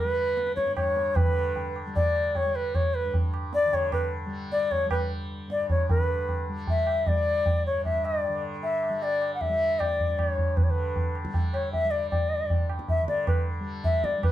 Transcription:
Already playing: G2 D3 G3 B4
0.04 G3
0.37 tabla te
0.47 tabla te
0.56 C#5, tabla ke
0.65 G2, tabla te
0.76 C#5, tabla na, tabla ge
0.97 tabla te
1.16 B4, tabla tin, tabla ge
1.26 D3
1.56 tabla tin, tabla ge
1.76 tabla na
1.86 G3
1.95 D5, tabla tin, tabla ge
2.16 tabla na
2.35 C#5, tabla tin, tabla ge
2.45 G3
2.55 B4
2.75 C#5, tabla tin, tabla ge
2.95 B4
3.05 G2
3.14 tabla tin, tabla ge
3.34 tabla na
3.53 D5, tabla te
3.65 D3
3.73 C#5, tabla tin, tabla ge
3.92 B4, tabla na, tabla ge
4.26 G3
4.52 D5, tabla te
4.71 C#5, tabla tin, tabla ge
4.85 G3
4.91 B4, tabla na, tabla ge
5.48 G2 D5, tabla te
5.70 C#5, tabla tin, tabla ge
5.89 D3 B4, tabla tin, tabla ge
6.29 tabla tin, tabla ge
6.49 G3
6.67 E5, tabla tin, tabla ge
6.87 tabla na
7.07 G3 D5, tabla tin, tabla ge
7.46 tabla tin, tabla ge
7.66 G2 C#5
7.85 E5, tabla tin, tabla ge
8.05 D5, tabla na
8.25 D3, tabla tin
8.63 E5, tabla tin
8.83 tabla na
8.89 G3
9.02 D5, tabla tin
9.22 tabla na
9.34 F#5
9.41 E5, tabla tin, tabla ge
9.49 G3
9.79 D5, tabla na, tabla ge
10.00 tabla ge
10.07 G2
10.18 D5, tabla na, tabla ge
10.29 C#5
10.38 tabla ge
10.57 B4, tabla tin, tabla ge
10.64 D3 C#5
10.70 B4
10.96 tabla tin, tabla ge
11.15 tabla na
11.25 G3, tabla ke
11.34 tabla tin, tabla ge
11.54 C#5, tabla na
11.72 E5, tabla tin, tabla ge
11.84 G3
11.91 D5
12.10 D5, tabla tin, tabla ge
12.42 G2
12.50 tabla tin, tabla ge
12.69 tabla na
12.79 tabla ke
12.88 E5, tabla tin, tabla ge
13.01 D3
13.08 D5, tabla ke
13.27 B4, tabla na, tabla ge
13.60 G3
13.84 E5, tabla tin, tabla ge
14.04 D5, tabla ke
14.18 G3
14.23 B4, tabla na, tabla ge

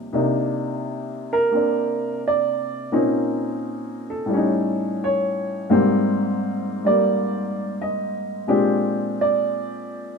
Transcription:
Already playing: D#2 C3 F3 G3 D#4 F4
0.13 C3 A#3 D4 D#4
1.33 A#4
1.52 A#3 C4 D4
2.28 D5
2.92 A#2 A#3 C4 C#4 D#4
4.10 A4
4.26 A2 G3
4.33 C#4 D#4
5.04 C#5
5.70 G#2 G3 A#3 C4
6.85 G3 A#3 D5
7.82 D#5
8.47 A#2 G#3 C4 D4 G4
9.21 D5

